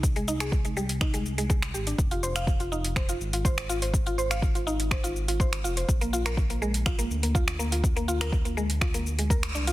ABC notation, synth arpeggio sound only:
X:1
M:4/4
L:1/16
Q:1/4=123
K:Fdor
V:1 name="Synth arpeggio sound"
z A, E A z A, G, z E A, z A, A, z G D | z F c f z F E z c F z F c z F c | z F c f z F E z c F z F c z F c | z B, F B z B, A, z F B, z B, F z B, F |
z B, F B z B, A, z F B, z A, B z D F |]